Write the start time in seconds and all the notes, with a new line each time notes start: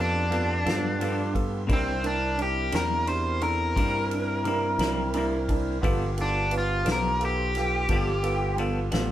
Already playing: F2 B3 F4 G4 A4
0.01 D4
0.30 G2 F3 B3 F4 A4, ride
0.34 D4
0.64 G2 F3 B3 D4 F4 A4, snare, ride
0.99 G2 F3 B3 D4 F4 A4, ride
1.33 B3 F4 A4, kick, ride
1.67 C2 C3 G3 A#3 C4 D4 E4 A#4, kick, ride
1.73 C4
2.03 D4 E4 A#4, ride
2.37 D4 E4 A#4, ride
2.42 G4
2.71 E2 A#3 D4 E4 A#4, snare, ride
2.76 G3 A#4
3.06 D4 E4 G4 C5, ride
3.41 D4 E4 A4 A#4, ride
3.76 G2 C3 G3 A#3 D4 E4 A#4, kick, ride
4.11 D4 E4 A#4, ride
4.45 C3 G3 A#3 D4 E4 A#4, ride
4.78 C2 A#3 D4 E4 A#4, snare, ride
4.83 G3
5.13 C3 G3 D4 E4 A#4 G5, ride
5.17 A#3 E4
5.49 D4 E4 A#4 A5, kick, ride
5.81 G1 G2 F3 B3 D4 F4 G4 A4, kick, ride
6.17 B3 F4 A4, ride
6.21 D4
6.50 B3 F4 B4, ride
6.58 F4
6.83 B1 B3 D4 F4 A4, ride
6.88 F3 B3, snare
6.92 A#4
7.19 B3 F4 A4, ride
7.25 G4
7.55 B3 F4 A4, snare, ride
7.88 G1 G2 F3 B3 F4 A4, kick, ride
7.92 D4
8.22 B3 F4 A4, ride
8.56 G2 F3 B3 D4 F4 A4, ride
8.92 A1 B3 D4 F4 A4, snare, ride
8.96 F3